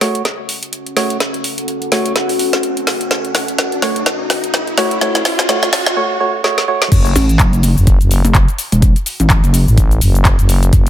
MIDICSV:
0, 0, Header, 1, 7, 480
1, 0, Start_track
1, 0, Key_signature, 3, "minor"
1, 0, Tempo, 476190
1, 1214, Time_signature, 4, 2, 24, 8
1, 10981, End_track
2, 0, Start_track
2, 0, Title_t, "Ambient pad"
2, 0, Program_c, 0, 92
2, 0, Note_on_c, 0, 61, 81
2, 0, Note_on_c, 0, 66, 73
2, 0, Note_on_c, 0, 69, 73
2, 0, Note_on_c, 0, 78, 89
2, 5974, Note_off_c, 0, 61, 0
2, 5974, Note_off_c, 0, 66, 0
2, 5974, Note_off_c, 0, 69, 0
2, 5974, Note_off_c, 0, 78, 0
2, 6974, Note_on_c, 0, 61, 82
2, 6974, Note_on_c, 0, 69, 75
2, 6974, Note_on_c, 0, 78, 93
2, 6975, Note_on_c, 0, 66, 75
2, 10803, Note_off_c, 0, 78, 0
2, 10981, Note_off_c, 0, 61, 0
2, 10981, Note_off_c, 0, 66, 0
2, 10981, Note_off_c, 0, 69, 0
2, 10981, End_track
3, 0, Start_track
3, 0, Title_t, "Synth stab"
3, 0, Program_c, 1, 62
3, 13, Note_on_c, 1, 57, 88
3, 13, Note_on_c, 1, 66, 81
3, 13, Note_on_c, 1, 73, 97
3, 223, Note_off_c, 1, 57, 0
3, 223, Note_off_c, 1, 66, 0
3, 223, Note_off_c, 1, 73, 0
3, 973, Note_on_c, 1, 57, 89
3, 973, Note_on_c, 1, 66, 79
3, 973, Note_on_c, 1, 73, 94
3, 1183, Note_off_c, 1, 57, 0
3, 1183, Note_off_c, 1, 66, 0
3, 1183, Note_off_c, 1, 73, 0
3, 1933, Note_on_c, 1, 57, 87
3, 1933, Note_on_c, 1, 66, 79
3, 1933, Note_on_c, 1, 73, 101
3, 2143, Note_off_c, 1, 57, 0
3, 2143, Note_off_c, 1, 66, 0
3, 2143, Note_off_c, 1, 73, 0
3, 3853, Note_on_c, 1, 66, 74
3, 3853, Note_on_c, 1, 73, 91
3, 3854, Note_on_c, 1, 57, 83
3, 4063, Note_off_c, 1, 57, 0
3, 4063, Note_off_c, 1, 66, 0
3, 4063, Note_off_c, 1, 73, 0
3, 4814, Note_on_c, 1, 57, 85
3, 4814, Note_on_c, 1, 66, 74
3, 4814, Note_on_c, 1, 73, 93
3, 5023, Note_off_c, 1, 57, 0
3, 5023, Note_off_c, 1, 66, 0
3, 5023, Note_off_c, 1, 73, 0
3, 5054, Note_on_c, 1, 57, 89
3, 5054, Note_on_c, 1, 66, 77
3, 5054, Note_on_c, 1, 73, 101
3, 5263, Note_off_c, 1, 57, 0
3, 5263, Note_off_c, 1, 66, 0
3, 5263, Note_off_c, 1, 73, 0
3, 5534, Note_on_c, 1, 57, 89
3, 5534, Note_on_c, 1, 66, 86
3, 5534, Note_on_c, 1, 73, 104
3, 5743, Note_off_c, 1, 57, 0
3, 5743, Note_off_c, 1, 66, 0
3, 5743, Note_off_c, 1, 73, 0
3, 6013, Note_on_c, 1, 57, 95
3, 6013, Note_on_c, 1, 66, 85
3, 6013, Note_on_c, 1, 73, 102
3, 6223, Note_off_c, 1, 57, 0
3, 6223, Note_off_c, 1, 66, 0
3, 6223, Note_off_c, 1, 73, 0
3, 6253, Note_on_c, 1, 57, 92
3, 6253, Note_on_c, 1, 66, 85
3, 6254, Note_on_c, 1, 73, 105
3, 6463, Note_off_c, 1, 57, 0
3, 6463, Note_off_c, 1, 66, 0
3, 6463, Note_off_c, 1, 73, 0
3, 6493, Note_on_c, 1, 57, 93
3, 6493, Note_on_c, 1, 66, 85
3, 6493, Note_on_c, 1, 73, 107
3, 6703, Note_off_c, 1, 57, 0
3, 6703, Note_off_c, 1, 66, 0
3, 6703, Note_off_c, 1, 73, 0
3, 6733, Note_on_c, 1, 66, 81
3, 6733, Note_on_c, 1, 73, 107
3, 6734, Note_on_c, 1, 57, 91
3, 6943, Note_off_c, 1, 57, 0
3, 6943, Note_off_c, 1, 66, 0
3, 6943, Note_off_c, 1, 73, 0
3, 10981, End_track
4, 0, Start_track
4, 0, Title_t, "FM bass"
4, 0, Program_c, 2, 39
4, 6973, Note_on_c, 2, 30, 99
4, 7197, Note_off_c, 2, 30, 0
4, 7832, Note_on_c, 2, 30, 88
4, 8050, Note_off_c, 2, 30, 0
4, 8072, Note_on_c, 2, 30, 97
4, 8290, Note_off_c, 2, 30, 0
4, 9752, Note_on_c, 2, 33, 90
4, 10077, Note_off_c, 2, 33, 0
4, 10094, Note_on_c, 2, 30, 101
4, 10450, Note_off_c, 2, 30, 0
4, 10472, Note_on_c, 2, 30, 99
4, 10798, Note_off_c, 2, 30, 0
4, 10814, Note_on_c, 2, 30, 102
4, 10981, Note_off_c, 2, 30, 0
4, 10981, End_track
5, 0, Start_track
5, 0, Title_t, "Wobble bass"
5, 0, Program_c, 3, 39
5, 7214, Note_on_c, 3, 33, 98
5, 7438, Note_off_c, 3, 33, 0
5, 7454, Note_on_c, 3, 30, 98
5, 7810, Note_off_c, 3, 30, 0
5, 8312, Note_on_c, 3, 30, 102
5, 8530, Note_off_c, 3, 30, 0
5, 8792, Note_on_c, 3, 28, 93
5, 9010, Note_off_c, 3, 28, 0
5, 9273, Note_on_c, 3, 33, 99
5, 9490, Note_off_c, 3, 33, 0
5, 9513, Note_on_c, 3, 30, 99
5, 9730, Note_off_c, 3, 30, 0
5, 10981, End_track
6, 0, Start_track
6, 0, Title_t, "Riser"
6, 0, Program_c, 4, 103
6, 0, Note_on_c, 4, 60, 76
6, 6014, Note_off_c, 4, 60, 0
6, 10981, End_track
7, 0, Start_track
7, 0, Title_t, "Drums"
7, 13, Note_on_c, 9, 38, 49
7, 13, Note_on_c, 9, 46, 103
7, 114, Note_off_c, 9, 38, 0
7, 114, Note_off_c, 9, 46, 0
7, 151, Note_on_c, 9, 42, 52
7, 252, Note_off_c, 9, 42, 0
7, 253, Note_on_c, 9, 38, 51
7, 253, Note_on_c, 9, 42, 63
7, 354, Note_off_c, 9, 38, 0
7, 354, Note_off_c, 9, 42, 0
7, 493, Note_on_c, 9, 46, 99
7, 593, Note_off_c, 9, 46, 0
7, 631, Note_on_c, 9, 42, 54
7, 732, Note_off_c, 9, 42, 0
7, 733, Note_on_c, 9, 42, 64
7, 834, Note_off_c, 9, 42, 0
7, 872, Note_on_c, 9, 42, 37
7, 973, Note_off_c, 9, 42, 0
7, 974, Note_on_c, 9, 38, 53
7, 974, Note_on_c, 9, 46, 101
7, 1074, Note_off_c, 9, 38, 0
7, 1074, Note_off_c, 9, 46, 0
7, 1112, Note_on_c, 9, 42, 55
7, 1213, Note_off_c, 9, 42, 0
7, 1214, Note_on_c, 9, 38, 59
7, 1214, Note_on_c, 9, 42, 65
7, 1314, Note_off_c, 9, 38, 0
7, 1314, Note_off_c, 9, 42, 0
7, 1352, Note_on_c, 9, 42, 36
7, 1453, Note_off_c, 9, 42, 0
7, 1454, Note_on_c, 9, 46, 106
7, 1554, Note_off_c, 9, 46, 0
7, 1592, Note_on_c, 9, 42, 53
7, 1693, Note_off_c, 9, 42, 0
7, 1693, Note_on_c, 9, 42, 68
7, 1794, Note_off_c, 9, 42, 0
7, 1832, Note_on_c, 9, 42, 35
7, 1933, Note_off_c, 9, 42, 0
7, 1933, Note_on_c, 9, 38, 64
7, 1933, Note_on_c, 9, 46, 112
7, 2034, Note_off_c, 9, 38, 0
7, 2034, Note_off_c, 9, 46, 0
7, 2072, Note_on_c, 9, 42, 53
7, 2173, Note_off_c, 9, 42, 0
7, 2174, Note_on_c, 9, 38, 66
7, 2174, Note_on_c, 9, 42, 64
7, 2274, Note_off_c, 9, 38, 0
7, 2274, Note_off_c, 9, 42, 0
7, 2312, Note_on_c, 9, 46, 59
7, 2413, Note_off_c, 9, 46, 0
7, 2413, Note_on_c, 9, 46, 108
7, 2514, Note_off_c, 9, 46, 0
7, 2552, Note_on_c, 9, 38, 62
7, 2552, Note_on_c, 9, 42, 51
7, 2653, Note_off_c, 9, 38, 0
7, 2653, Note_off_c, 9, 42, 0
7, 2653, Note_on_c, 9, 42, 63
7, 2754, Note_off_c, 9, 42, 0
7, 2792, Note_on_c, 9, 42, 37
7, 2893, Note_off_c, 9, 42, 0
7, 2893, Note_on_c, 9, 38, 74
7, 2893, Note_on_c, 9, 46, 111
7, 2994, Note_off_c, 9, 38, 0
7, 2994, Note_off_c, 9, 46, 0
7, 3032, Note_on_c, 9, 42, 55
7, 3133, Note_off_c, 9, 42, 0
7, 3133, Note_on_c, 9, 38, 71
7, 3133, Note_on_c, 9, 42, 64
7, 3234, Note_off_c, 9, 38, 0
7, 3234, Note_off_c, 9, 42, 0
7, 3272, Note_on_c, 9, 42, 35
7, 3373, Note_off_c, 9, 42, 0
7, 3373, Note_on_c, 9, 38, 73
7, 3373, Note_on_c, 9, 46, 102
7, 3474, Note_off_c, 9, 38, 0
7, 3474, Note_off_c, 9, 46, 0
7, 3512, Note_on_c, 9, 42, 51
7, 3613, Note_off_c, 9, 42, 0
7, 3613, Note_on_c, 9, 38, 78
7, 3613, Note_on_c, 9, 42, 63
7, 3714, Note_off_c, 9, 38, 0
7, 3714, Note_off_c, 9, 42, 0
7, 3752, Note_on_c, 9, 42, 35
7, 3853, Note_off_c, 9, 42, 0
7, 3854, Note_on_c, 9, 38, 81
7, 3854, Note_on_c, 9, 46, 109
7, 3955, Note_off_c, 9, 38, 0
7, 3955, Note_off_c, 9, 46, 0
7, 3993, Note_on_c, 9, 42, 52
7, 4093, Note_off_c, 9, 42, 0
7, 4094, Note_on_c, 9, 38, 82
7, 4094, Note_on_c, 9, 42, 65
7, 4195, Note_off_c, 9, 38, 0
7, 4195, Note_off_c, 9, 42, 0
7, 4334, Note_on_c, 9, 38, 80
7, 4334, Note_on_c, 9, 46, 106
7, 4435, Note_off_c, 9, 38, 0
7, 4435, Note_off_c, 9, 46, 0
7, 4472, Note_on_c, 9, 42, 51
7, 4573, Note_off_c, 9, 42, 0
7, 4574, Note_on_c, 9, 38, 83
7, 4574, Note_on_c, 9, 42, 62
7, 4674, Note_off_c, 9, 38, 0
7, 4674, Note_off_c, 9, 42, 0
7, 4712, Note_on_c, 9, 42, 34
7, 4813, Note_off_c, 9, 42, 0
7, 4814, Note_on_c, 9, 38, 92
7, 4814, Note_on_c, 9, 46, 117
7, 4914, Note_off_c, 9, 38, 0
7, 4914, Note_off_c, 9, 46, 0
7, 4952, Note_on_c, 9, 42, 53
7, 5053, Note_off_c, 9, 42, 0
7, 5054, Note_on_c, 9, 38, 90
7, 5054, Note_on_c, 9, 42, 63
7, 5155, Note_off_c, 9, 38, 0
7, 5155, Note_off_c, 9, 42, 0
7, 5192, Note_on_c, 9, 38, 85
7, 5192, Note_on_c, 9, 42, 34
7, 5293, Note_off_c, 9, 38, 0
7, 5293, Note_off_c, 9, 42, 0
7, 5294, Note_on_c, 9, 38, 90
7, 5294, Note_on_c, 9, 46, 104
7, 5394, Note_off_c, 9, 38, 0
7, 5394, Note_off_c, 9, 46, 0
7, 5432, Note_on_c, 9, 38, 82
7, 5432, Note_on_c, 9, 42, 49
7, 5533, Note_off_c, 9, 38, 0
7, 5533, Note_off_c, 9, 42, 0
7, 5534, Note_on_c, 9, 38, 98
7, 5534, Note_on_c, 9, 42, 62
7, 5634, Note_off_c, 9, 38, 0
7, 5634, Note_off_c, 9, 42, 0
7, 5672, Note_on_c, 9, 38, 87
7, 5672, Note_on_c, 9, 42, 34
7, 5773, Note_off_c, 9, 38, 0
7, 5773, Note_off_c, 9, 42, 0
7, 5773, Note_on_c, 9, 38, 99
7, 5773, Note_on_c, 9, 46, 114
7, 5874, Note_off_c, 9, 38, 0
7, 5874, Note_off_c, 9, 46, 0
7, 5912, Note_on_c, 9, 38, 93
7, 5912, Note_on_c, 9, 42, 53
7, 6012, Note_off_c, 9, 38, 0
7, 6012, Note_off_c, 9, 42, 0
7, 6493, Note_on_c, 9, 38, 63
7, 6594, Note_off_c, 9, 38, 0
7, 6631, Note_on_c, 9, 38, 65
7, 6732, Note_off_c, 9, 38, 0
7, 6871, Note_on_c, 9, 38, 86
7, 6972, Note_off_c, 9, 38, 0
7, 6973, Note_on_c, 9, 42, 86
7, 6973, Note_on_c, 9, 49, 105
7, 6974, Note_on_c, 9, 36, 114
7, 6979, Note_on_c, 9, 82, 44
7, 7074, Note_off_c, 9, 36, 0
7, 7074, Note_off_c, 9, 42, 0
7, 7074, Note_off_c, 9, 49, 0
7, 7080, Note_off_c, 9, 82, 0
7, 7112, Note_on_c, 9, 42, 53
7, 7117, Note_on_c, 9, 82, 32
7, 7212, Note_off_c, 9, 42, 0
7, 7213, Note_on_c, 9, 46, 97
7, 7218, Note_off_c, 9, 82, 0
7, 7219, Note_on_c, 9, 82, 72
7, 7314, Note_off_c, 9, 46, 0
7, 7319, Note_off_c, 9, 82, 0
7, 7352, Note_on_c, 9, 42, 37
7, 7357, Note_on_c, 9, 82, 35
7, 7453, Note_off_c, 9, 42, 0
7, 7453, Note_on_c, 9, 42, 88
7, 7454, Note_on_c, 9, 36, 119
7, 7455, Note_on_c, 9, 39, 124
7, 7458, Note_off_c, 9, 82, 0
7, 7459, Note_on_c, 9, 82, 46
7, 7554, Note_off_c, 9, 36, 0
7, 7554, Note_off_c, 9, 42, 0
7, 7556, Note_off_c, 9, 39, 0
7, 7560, Note_off_c, 9, 82, 0
7, 7592, Note_on_c, 9, 42, 39
7, 7597, Note_on_c, 9, 82, 30
7, 7692, Note_off_c, 9, 42, 0
7, 7693, Note_on_c, 9, 46, 111
7, 7698, Note_off_c, 9, 82, 0
7, 7699, Note_on_c, 9, 82, 84
7, 7794, Note_off_c, 9, 46, 0
7, 7800, Note_off_c, 9, 82, 0
7, 7837, Note_on_c, 9, 82, 35
7, 7933, Note_on_c, 9, 42, 88
7, 7934, Note_on_c, 9, 36, 117
7, 7938, Note_off_c, 9, 82, 0
7, 7939, Note_on_c, 9, 82, 44
7, 8034, Note_off_c, 9, 36, 0
7, 8034, Note_off_c, 9, 42, 0
7, 8040, Note_off_c, 9, 82, 0
7, 8072, Note_on_c, 9, 42, 37
7, 8077, Note_on_c, 9, 82, 30
7, 8173, Note_off_c, 9, 42, 0
7, 8173, Note_on_c, 9, 46, 106
7, 8178, Note_off_c, 9, 82, 0
7, 8179, Note_on_c, 9, 82, 78
7, 8274, Note_off_c, 9, 46, 0
7, 8280, Note_off_c, 9, 82, 0
7, 8312, Note_on_c, 9, 42, 39
7, 8317, Note_on_c, 9, 82, 33
7, 8413, Note_off_c, 9, 42, 0
7, 8414, Note_on_c, 9, 36, 119
7, 8414, Note_on_c, 9, 42, 80
7, 8415, Note_on_c, 9, 39, 122
7, 8418, Note_off_c, 9, 82, 0
7, 8419, Note_on_c, 9, 82, 43
7, 8514, Note_off_c, 9, 36, 0
7, 8514, Note_off_c, 9, 42, 0
7, 8516, Note_off_c, 9, 39, 0
7, 8520, Note_off_c, 9, 82, 0
7, 8552, Note_on_c, 9, 42, 38
7, 8558, Note_on_c, 9, 82, 32
7, 8653, Note_off_c, 9, 42, 0
7, 8654, Note_on_c, 9, 46, 107
7, 8659, Note_off_c, 9, 82, 0
7, 8659, Note_on_c, 9, 82, 78
7, 8755, Note_off_c, 9, 46, 0
7, 8760, Note_off_c, 9, 82, 0
7, 8793, Note_on_c, 9, 42, 57
7, 8798, Note_on_c, 9, 82, 33
7, 8893, Note_off_c, 9, 42, 0
7, 8894, Note_on_c, 9, 36, 126
7, 8894, Note_on_c, 9, 42, 83
7, 8899, Note_off_c, 9, 82, 0
7, 8900, Note_on_c, 9, 82, 45
7, 8994, Note_off_c, 9, 36, 0
7, 8995, Note_off_c, 9, 42, 0
7, 9001, Note_off_c, 9, 82, 0
7, 9032, Note_on_c, 9, 42, 55
7, 9038, Note_on_c, 9, 82, 29
7, 9133, Note_off_c, 9, 42, 0
7, 9134, Note_on_c, 9, 46, 107
7, 9139, Note_off_c, 9, 82, 0
7, 9139, Note_on_c, 9, 82, 76
7, 9235, Note_off_c, 9, 46, 0
7, 9240, Note_off_c, 9, 82, 0
7, 9272, Note_on_c, 9, 42, 39
7, 9278, Note_on_c, 9, 82, 32
7, 9373, Note_off_c, 9, 42, 0
7, 9374, Note_on_c, 9, 36, 121
7, 9374, Note_on_c, 9, 42, 82
7, 9376, Note_on_c, 9, 39, 127
7, 9379, Note_off_c, 9, 82, 0
7, 9379, Note_on_c, 9, 82, 44
7, 9475, Note_off_c, 9, 36, 0
7, 9475, Note_off_c, 9, 42, 0
7, 9476, Note_off_c, 9, 39, 0
7, 9480, Note_off_c, 9, 82, 0
7, 9513, Note_on_c, 9, 42, 37
7, 9518, Note_on_c, 9, 82, 31
7, 9613, Note_off_c, 9, 42, 0
7, 9614, Note_on_c, 9, 46, 110
7, 9619, Note_off_c, 9, 82, 0
7, 9620, Note_on_c, 9, 82, 80
7, 9715, Note_off_c, 9, 46, 0
7, 9721, Note_off_c, 9, 82, 0
7, 9758, Note_on_c, 9, 82, 33
7, 9854, Note_on_c, 9, 36, 121
7, 9854, Note_on_c, 9, 42, 83
7, 9859, Note_off_c, 9, 82, 0
7, 9860, Note_on_c, 9, 82, 45
7, 9955, Note_off_c, 9, 36, 0
7, 9955, Note_off_c, 9, 42, 0
7, 9961, Note_off_c, 9, 82, 0
7, 9992, Note_on_c, 9, 42, 37
7, 9998, Note_on_c, 9, 82, 30
7, 10093, Note_off_c, 9, 42, 0
7, 10094, Note_on_c, 9, 46, 108
7, 10099, Note_off_c, 9, 82, 0
7, 10100, Note_on_c, 9, 82, 76
7, 10195, Note_off_c, 9, 46, 0
7, 10200, Note_off_c, 9, 82, 0
7, 10232, Note_on_c, 9, 42, 37
7, 10238, Note_on_c, 9, 82, 31
7, 10333, Note_off_c, 9, 42, 0
7, 10334, Note_on_c, 9, 36, 127
7, 10334, Note_on_c, 9, 42, 80
7, 10335, Note_on_c, 9, 39, 126
7, 10339, Note_off_c, 9, 82, 0
7, 10339, Note_on_c, 9, 82, 43
7, 10434, Note_off_c, 9, 36, 0
7, 10434, Note_off_c, 9, 42, 0
7, 10436, Note_off_c, 9, 39, 0
7, 10440, Note_off_c, 9, 82, 0
7, 10472, Note_on_c, 9, 42, 38
7, 10478, Note_on_c, 9, 82, 33
7, 10573, Note_off_c, 9, 42, 0
7, 10574, Note_on_c, 9, 46, 117
7, 10578, Note_off_c, 9, 82, 0
7, 10579, Note_on_c, 9, 82, 75
7, 10674, Note_off_c, 9, 46, 0
7, 10680, Note_off_c, 9, 82, 0
7, 10712, Note_on_c, 9, 42, 57
7, 10718, Note_on_c, 9, 82, 32
7, 10813, Note_off_c, 9, 42, 0
7, 10814, Note_on_c, 9, 36, 127
7, 10814, Note_on_c, 9, 42, 76
7, 10819, Note_off_c, 9, 82, 0
7, 10819, Note_on_c, 9, 82, 44
7, 10914, Note_off_c, 9, 36, 0
7, 10914, Note_off_c, 9, 42, 0
7, 10920, Note_off_c, 9, 82, 0
7, 10981, End_track
0, 0, End_of_file